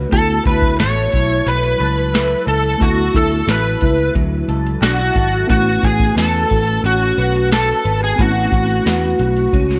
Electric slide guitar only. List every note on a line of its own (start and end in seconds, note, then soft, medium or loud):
0.13 0.46 A4 medium
0.47 0.79 B4 medium
0.80 1.49 C#5 loud
1.48 2.48 B4 loud
2.48 2.82 A4 medium
2.82 3.16 F#4 medium
3.16 3.50 A4 medium
3.49 4.12 B4 medium
4.82 5.49 F#4 medium
5.50 5.85 F#4 medium
5.84 6.18 G#4 medium
6.18 6.81 A4 loud
6.86 7.48 F#4 medium
7.53 8.03 A4 medium
8.04 8.20 G#4 medium
8.21 9.79 F#4 medium